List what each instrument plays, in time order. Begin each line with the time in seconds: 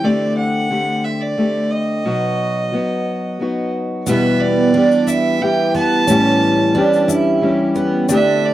0.03 steel-string acoustic guitar D3 A3 C4 G4, fiddle D5
0.37 fiddle F#5
0.70 steel-string acoustic guitar D3 A3 C4 G4
1.04 fiddle E5
1.21 fiddle D5
1.37 steel-string acoustic guitar D3 A3 C4 G4
1.71 fiddle D#5
2.05 steel-string acoustic guitar B2 F#3 B3 D#4 F#4
2.72 steel-string acoustic guitar F#3 B3 D#4 F#4
3.40 steel-string acoustic guitar F#3 B3 D#4 F#4
4.06 steel-string acoustic guitar E2 B2 E3 G3 B3 G4, twelve-string acoustic guitar B3, fiddle E5, shaker
4.40 fiddle D5
4.74 steel-string acoustic guitar E3 G3 B3 G4, twelve-string acoustic guitar D4
4.91 shaker
5.07 twelve-string acoustic guitar E4, fiddle E5, shaker
5.41 steel-string acoustic guitar E3 G3 B3 G4, fiddle G5
5.74 twelve-string acoustic guitar B3, fiddle A5, shaker
6.07 steel-string acoustic guitar A2 E3 G3 C#4 G4, twelve-string acoustic guitar C#4, shaker
6.75 steel-string acoustic guitar E3 G3 C#4 G4, twelve-string acoustic guitar D4
6.93 shaker
7.08 twelve-string acoustic guitar E4, shaker
7.41 steel-string acoustic guitar E3 G3 C#4 G4
7.75 twelve-string acoustic guitar B3, shaker
8.09 steel-string acoustic guitar D3 A3 C4 G4, twelve-string acoustic guitar D4, shaker
8.14 fiddle E5
8.46 fiddle D5